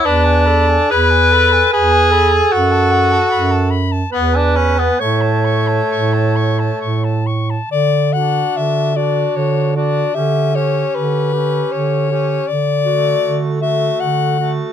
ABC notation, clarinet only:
X:1
M:3/4
L:1/8
Q:1/4=75
K:A
V:1 name="Clarinet"
B A G A B A- | A3 z B2 | c4- c z | [K:D] z F2 F2 F |
G G2 G2 G | z F2 F2 F |]